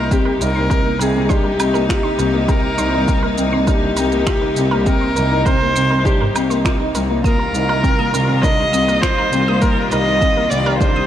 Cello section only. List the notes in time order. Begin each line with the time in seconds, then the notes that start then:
0.41 C2
1.00 C2
1.45 C2
1.60 C2
2.19 C2
2.78 C2
3.38 C2
3.83 C2
3.98 C2
4.57 C2
5.16 C2
5.75 C2
6.21 G2
6.35 C2
6.95 C2
7.54 C2
8.13 C2
8.58 C2
8.72 C2
9.32 C2
9.91 C2
10.51 C2
10.95 C2